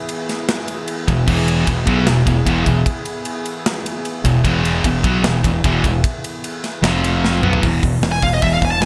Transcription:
0.00 6.81 E3 medium
0.00 6.81 B3 medium
0.00 6.80 E4 medium
0.00 6.81 G#4 loud
0.09 ride loud
0.29 snare soft
0.29 ride medium
0.49 snare loud
0.49 ride loud
0.68 ride medium
0.88 ride loud
1.08 1.27 E1 medium
1.08 1.24 E2 medium
1.08 1.24 B2 medium
1.08 kick medium
1.08 ride medium
1.26 1.65 E1 medium
1.26 1.66 E2 loud
1.26 1.66 B2 loud
1.26 1.67 E3 loud
1.26 kick loud
1.26 crash loud
1.48 ride medium
1.67 1.86 E1 medium
1.67 1.83 E2 medium
1.67 1.83 B2 medium
1.67 kick loud
1.67 ride loud
1.86 2.06 B1 loud
1.86 2.06 B2 medium
1.86 2.07 F#3 loud
1.86 2.07 B3 medium
1.86 kick loud
1.86 ride medium
2.07 2.26 E1 medium
2.07 2.23 E2 medium
2.07 2.24 B2 medium
2.07 snare loud
2.07 ride loud
2.26 2.45 E1 medium
2.26 2.43 E2 medium
2.26 2.43 B2 medium
2.26 kick loud
2.26 ride medium
2.45 2.65 E1 medium
2.45 2.64 E2 loud
2.45 2.65 B2 medium
2.45 2.66 E3 loud
2.45 kick loud
2.45 ride loud
2.66 2.85 E1 medium
2.66 2.82 E2 medium
2.66 2.82 B2 medium
2.66 kick medium
2.66 ride medium
2.86 kick loud
2.86 ride loud
3.05 ride medium
3.25 ride loud
3.46 ride medium
3.66 snare loud
3.66 ride loud
3.86 ride medium
4.05 ride medium
4.24 4.43 E1 medium
4.24 4.41 E2 medium
4.24 4.42 B2 medium
4.24 kick loud
4.24 ride medium
4.44 4.82 E1 loud
4.44 4.84 E2 loud
4.44 4.85 B2 loud
4.44 4.85 E3 loud
4.44 kick medium
4.44 ride loud
4.65 ride medium
4.84 5.03 E1 medium
4.84 5.01 E2 medium
4.84 5.01 B2 medium
4.84 kick medium
4.84 ride loud
5.04 5.23 B1 medium
5.04 5.24 B2 medium
5.04 5.24 F#3 loud
5.04 5.25 B3 loud
5.04 kick loud
5.04 ride medium
5.24 5.43 E1 medium
5.24 5.41 E2 medium
5.24 5.41 B2 medium
5.24 snare loud
5.24 ride medium
5.44 5.63 E1 medium
5.44 5.61 E2 medium
5.44 5.61 B2 medium
5.44 kick loud
5.44 ride medium
5.64 5.83 E1 medium
5.64 5.83 E2 medium
5.64 5.83 B2 loud
5.64 5.84 E3 loud
5.64 kick loud
5.64 ride loud
5.84 6.03 E1 medium
5.84 6.00 E2 medium
5.84 6.00 B2 medium
5.84 kick medium
5.84 ride medium
6.04 kick loud
6.04 ride medium
6.24 ride medium
6.44 ride loud
6.64 snare soft
6.64 ride medium
6.82 7.39 F1 loud
6.82 7.42 F2 medium
6.82 7.42 C3 loud
6.82 7.42 F3 loud
6.82 snare loud
6.82 ride loud
6.88 7.45 F3 medium
6.88 7.45 C4 medium
6.88 7.45 F4 medium
6.88 7.45 F5 medium
7.04 ride medium
7.25 snare medium
7.42 7.61 B1 loud
7.42 7.61 B2 medium
7.42 7.64 E3 medium
7.42 7.62 F#3 medium
7.42 7.63 B3 loud
7.42 7.64 E4 medium
7.42 mid tom loud
7.47 7.65 B3 medium
7.47 7.65 G#4 medium
7.53 floor tom loud
7.62 7.81 E1 medium
7.62 7.81 E2 medium
7.62 7.81 B2 medium
7.62 7.81 E3 medium
7.62 kick loud
7.62 open hi-hat medium
7.82 8.01 E1 medium
7.82 8.01 E2 medium
7.82 8.01 B2 medium
7.82 kick medium
7.82 open hi-hat medium
8.02 8.21 E1 medium
8.02 8.21 E2 medium
8.02 8.21 B2 medium
8.02 snare loud
8.02 open hi-hat medium
8.12 8.22 G#5 medium
8.22 8.42 E1 medium
8.22 8.41 E2 medium
8.22 8.41 B2 medium
8.22 8.33 F5 loud
8.22 kick medium
8.22 open hi-hat medium
8.34 8.42 D#5 medium
8.42 8.61 E1 medium
8.42 8.61 E2 medium
8.42 8.61 B2 medium
8.42 8.62 E3 medium
8.42 8.53 E5 medium
8.42 kick medium
8.42 open hi-hat medium
8.54 8.63 F5 medium
8.62 8.81 E1 medium
8.62 8.80 E2 medium
8.62 8.80 B2 medium
8.62 8.71 G#5 medium
8.62 kick medium
8.62 open hi-hat medium
8.71 8.81 A5 medium
8.81 8.85 E2 medium
8.81 8.85 B2 medium
8.81 8.85 G#5 medium
8.81 snare loud
8.81 open hi-hat medium

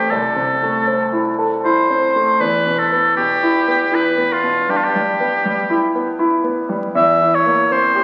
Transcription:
0.00 0.12 E2 soft
0.00 0.13 A3 soft
0.00 0.13 C4 soft
0.00 0.13 E4 soft
0.00 0.12 G4 soft
0.10 2.37 C2 soft
0.10 1.25 A4 soft
0.36 0.77 C3 soft
0.63 1.03 A3 soft
0.87 1.28 C4 soft
1.12 1.53 E4 soft
1.39 1.79 A4 soft
1.65 2.05 E4 soft
1.65 2.42 C5 medium
1.90 2.30 C4 soft
2.16 2.41 A3 soft
2.40 4.65 E2 soft
2.40 2.80 B4 medium
2.66 3.07 B2 soft
2.79 3.16 A4 medium
2.92 3.33 B3 soft
3.17 3.58 B2 soft
3.17 3.96 G4 medium
3.43 3.83 E4 soft
3.68 4.08 B3 soft
3.91 4.32 E4 soft
3.91 4.34 B4 medium
4.18 4.58 B3 soft
4.33 4.72 F4 medium
4.43 4.69 B2 soft
4.69 6.92 G2 medium
4.69 4.78 G4 soft
4.77 4.85 F4 soft
4.84 5.84 G4 medium
4.95 5.36 G3 soft
5.20 5.61 B3 soft
5.45 5.86 G3 soft
5.70 6.11 E4 soft
5.95 6.36 B3 soft
6.19 6.60 E4 soft
6.44 6.85 B3 soft
6.69 6.95 G3 soft
6.95 8.04 E2 medium
6.95 7.36 E5 medium
7.22 7.61 E3 soft
7.35 7.74 C#5 medium
7.46 7.85 A#3 soft
7.71 8.04 C4 soft
7.71 8.04 C5 medium
7.95 8.04 G4 soft

